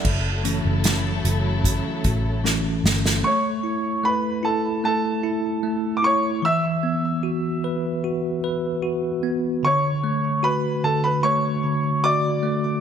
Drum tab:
CC |x---------------|----------------|----------------|----------------|
HH |--x-x-x-x-x-----|----------------|----------------|----------------|
SD |----o-------o-oo|----------------|----------------|----------------|
BD |o-------o-o-----|----------------|----------------|----------------|